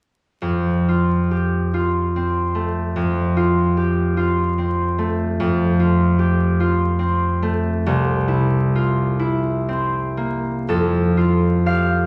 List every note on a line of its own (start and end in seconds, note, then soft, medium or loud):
0.42 2.95 F2 soft
0.89 1.73 F4 soft
1.31 2.02 G4 soft
1.74 3.35 F4 soft
2.16 4.57 C4 soft
2.55 4.97 A3 soft
2.96 5.39 F2 soft
3.37 4.16 F4 soft
3.77 4.46 G4 soft
4.17 5.79 F4 soft
4.58 6.98 C4 soft
4.98 7.41 A3 soft
5.40 7.88 F2 medium
5.80 6.59 F4 soft
6.19 6.87 G4 soft
6.60 7.89 F4 soft
6.99 9.67 C4 soft
7.43 7.89 A3 soft
7.86 10.72 C2 medium
8.28 9.18 E4 soft
8.75 9.53 F4 soft
9.19 10.72 E4 soft
9.69 12.06 C4 soft
10.17 10.72 A#3 soft
10.69 12.06 F2 soft
10.69 12.06 A4 medium
11.17 12.06 F4 soft
11.66 12.06 G4 soft
11.66 12.06 F5 medium